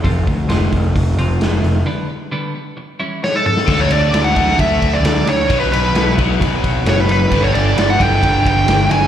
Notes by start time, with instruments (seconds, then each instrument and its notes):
0.04 picked electric bass F1, clean electric guitar F3 A3 C4 F4, kick, open hi-hat
0.26 picked electric bass D2, muted clean electric guitar stroke, kick, open hi-hat
0.48 picked electric bass F1, clean electric guitar F3 A3 C4 F4, snare, open hi-hat
0.72 picked electric bass F1, muted clean electric guitar stroke, kick, open hi-hat
0.95 picked electric bass F1, muted clean electric guitar stroke, kick, open hi-hat
1.18 picked electric bass F1, clean electric guitar F3 A3 C4 F4, open hi-hat
1.41 picked electric bass F1, muted clean electric guitar stroke, snare, open hi-hat
1.62 picked electric bass F1, muted clean electric guitar stroke, open hi-hat
1.86 clean electric guitar D3 G3 B3 D4
2.09 muted clean electric guitar stroke
2.32 clean electric guitar D3 G3 B3 D4
2.54 muted clean electric guitar stroke
2.77 muted clean electric guitar stroke
3.00 clean electric guitar E3 G3 C#4 E4
3.22 lead electric guitar C#5, muted clean electric guitar stroke, snare
3.35 lead electric guitar A4
3.45 lead electric guitar A4, muted clean electric guitar stroke, mid tom
3.57 snare
3.67 picked electric bass D2, overdriven electric guitar D3 A3 D4, clean electric guitar D3, kick, crash
3.80 lead electric guitar C#5
3.90 picked electric bass D2, lead electric guitar D5, ride
4.13 picked electric bass D2, clean electric guitar A3, snare, ride
4.24 lead electric guitar F#5
4.35 picked electric bass D2, overdriven electric guitar D3 A3 D4, clean electric guitar F#3, lead electric guitar F#5, kick, ride
4.48 snare
4.58 picked electric bass D2, clean electric guitar A3, lead electric guitar E5, kick, ride
4.80 clean electric guitar D3, kick, ride
4.94 lead electric guitar D5
5.03 picked electric bass D2, clean electric guitar F#3, snare, ride
5.26 picked electric bass D2, clean electric guitar D4, lead electric guitar C#5, ride
5.48 picked electric bass B1, overdriven electric guitar B2 F#3 B3, clean electric guitar B2, kick, ride
5.60 lead electric guitar B4
5.71 picked electric bass B1, lead electric guitar B4, ride
5.94 picked electric bass B1, clean electric guitar B3, snare, ride
6.17 picked electric bass B1, overdriven electric guitar B2 F#3 B3, clean electric guitar F#3, kick, ride
6.40 picked electric bass B1, clean electric guitar B3, kick, ride
6.63 clean electric guitar B2, kick, ride
6.85 picked electric bass F#1, clean electric guitar F#3, lead electric guitar C#5, snare, ride
7.00 lead electric guitar B4
7.09 clean electric guitar D#4, lead electric guitar B4, ride
7.31 picked electric bass G1, clean electric guitar G2, overdriven electric guitar G2 D3 G3, kick, ride
7.44 lead electric guitar C#5
7.53 picked electric bass G1, lead electric guitar D5, ride
7.75 picked electric bass G1, clean electric guitar B3, snare, ride
7.90 lead electric guitar F#5
7.99 picked electric bass G1, overdriven electric guitar G2 D3 G3, clean electric guitar G3, lead electric guitar G5, kick, ride
8.21 picked electric bass G1, clean electric guitar B3, kick, ride
8.44 clean electric guitar D3, lead electric guitar G5, kick, ride
8.67 picked electric bass G1, clean electric guitar G3, snare, ride
8.90 picked electric bass G1, clean electric guitar D4, lead electric guitar G#5, ride